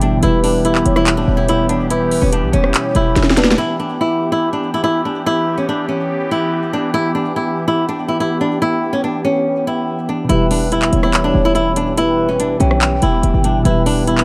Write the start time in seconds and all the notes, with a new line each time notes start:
Already playing: G1 E3 B3 G4 G5
0.00 B2 E3 G3 D4, closed hi-hat
0.04 E4
0.17 B2 E3
0.23 E1 E3 G3 B3 E4 G4 B4, closed hi-hat
0.28 E4
0.44 D4, open hi-hat
0.65 E4, closed hi-hat
0.75 clap
0.86 E1 C#5, closed hi-hat
0.96 E4, cross-stick
1.07 clap, closed hi-hat
1.17 D4
1.28 E1
1.37 E4
1.49 E4, closed hi-hat
1.69 D4, closed hi-hat
1.90 E4 B4, closed hi-hat
2.11 open hi-hat
2.21 E1 C#4
2.32 D4, closed hi-hat
2.43 B1
2.53 E1 C#4 C#5, closed hi-hat
2.64 cross-stick
2.74 clap, closed hi-hat
2.95 E1 E4, closed hi-hat
3.16 E1, snare, closed hi-hat
3.23 snare
3.30 snare
3.37 D4 B4, snare, closed hi-hat
3.44 snare
3.51 snare
3.58 E3 B3 E4 G4
3.80 D4
4.01 E4
4.32 E4
4.53 D4
4.74 E4
4.84 E4
5.05 D4
5.26 E4
5.58 C#4
5.69 D4
5.89 C#4
6.31 E4
6.73 D4
6.94 E4
7.15 D4
7.36 E4
7.68 E4
7.89 D4
8.08 E4
8.20 E4
8.41 D4
8.62 E4
8.93 C#4
9.04 D4
9.25 C#4
9.67 E4
10.09 D4
10.25 B2 E3
10.29 E1 E3 G3 E4 B4, closed hi-hat
10.35 E4
10.51 D4, open hi-hat
10.72 E4, closed hi-hat
10.82 clap
10.93 E1 C#5, closed hi-hat
11.03 E4, cross-stick
11.14 clap, closed hi-hat
11.24 D4
11.35 E1
11.45 E4
11.55 E4, closed hi-hat
11.76 D4, closed hi-hat
11.97 E4 B4, closed hi-hat
12.29 C#4
12.40 D4, closed hi-hat
12.60 B1 C#4 G5, closed hi-hat
12.71 cross-stick
12.81 clap, closed hi-hat
13.02 E1 E4, closed hi-hat
13.23 E1, closed hi-hat
13.34 G1
13.42 B2 E3 G3 D4, closed hi-hat
13.47 E4
13.60 B2 E3
13.65 E1 E3 G3 B3 E4 G4 B4, closed hi-hat
13.71 E4
13.86 D4, open hi-hat
14.07 E4, closed hi-hat
14.18 clap